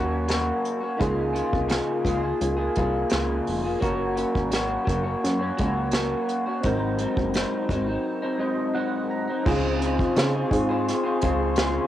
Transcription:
Already playing: D#2 F#3 A#3 C#4 F#4 A#4
0.28 F#3 A#3 C#4 F#4, snare, closed hi-hat
0.65 closed hi-hat
0.80 A#3 C#4 F#4
0.97 C#2 C#3 A#3 D#4 F4 G#4, kick, closed hi-hat
1.02 G#4
1.33 C#3 A#3 F4 G#4, closed hi-hat
1.53 C2, kick
1.68 C#3 A#3 F4 G#4, snare, closed hi-hat
2.04 C#2 C#3 A#3 F4 G#4, kick, closed hi-hat
2.22 A#3 F4 G#4
2.41 C#2, closed hi-hat
2.57 A#3 F4 G#4
2.76 C2 A#3 F4 G#4, kick, closed hi-hat
3.10 C#2 C#3 A#3 F4 G#4, snare, closed hi-hat
3.47 F1, open hi-hat
3.63 A#3 F4 G#4
3.79 F#1 F#3 A#3 C#4 F#4, kick, closed hi-hat
3.83 A#4
4.16 F#3 A#3 C#4 F#4, closed hi-hat
4.35 G#1, kick
4.52 F#3 A#3 C#4 F#4, snare, closed hi-hat
4.85 F#1 F#3 A#3 C#4 F#4, kick
4.89 closed hi-hat
5.03 A#3 C#4 F#4
5.24 F#2, snare, closed hi-hat
5.39 A#3 C#4 F#4
5.57 C#2 F#3 A#3 C#4 F#4, kick, closed hi-hat
5.91 F#3 A#3 C#4 F#4, snare, closed hi-hat
6.29 closed hi-hat
6.46 A#3 C#4 F#4
6.61 G#1 G#2 C4 D#4 F#4, kick, closed hi-hat
6.65 F#3 C4 D#4 A#4
6.99 G#2 F#3 C4 D#4, closed hi-hat
7.17 F#1, kick
7.34 G#2 F#3 C4 D#4, snare, closed hi-hat
7.69 G#1 G#2 F#3 C4 D#4, kick, closed hi-hat
7.86 F#3 C4 D#4
8.22 F#3 C4 D#4
8.38 G#2 F#3 C4 D#4 D#5
8.74 G#2 F#3 C4 D#4 F#5
9.10 A#5
9.28 F#3 C4 D#4
9.43 C#2 C#3 C4 D#4 F4 G#4 F5 C6 C#6, kick, crash
9.47 G#4
9.81 C#3 C4 F4 G#4, closed hi-hat
9.99 kick
10.16 C#3 C4 F4 G#4, snare, closed hi-hat
10.35 C4 F4 G#4
10.51 G#2, kick, closed hi-hat
10.69 C4 F4 G#4
10.89 snare, closed hi-hat
11.04 C4 F4 G#4
11.21 C#2 C#3 C4 F4 G#4, kick, closed hi-hat
11.56 C#3 C4 F4 G#4, snare, closed hi-hat

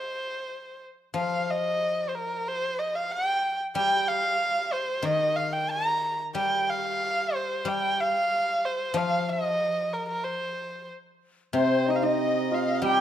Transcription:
Already playing: C5
1.14 F3 F5
1.51 D#5
2.09 C5
2.15 A#4
2.48 C5
2.79 D#5
2.95 F5
3.11 G5
3.75 G3 G5
4.08 F5
4.72 C5
5.02 D#3 D#5
5.36 F5
5.53 G5
5.71 A#5
6.35 G3 G5
6.69 F5
7.35 C5
7.65 G3 G5
8.00 F5
8.65 C5
8.94 F3 F5
9.29 D#5
9.93 A#4
10.09 A#4
10.24 C5
11.53 C3 C4 C5
11.86 D#4 D#5
11.96 F5
12.00 D#4 D#5
12.51 F4 F5
12.82 G3 G4 G5

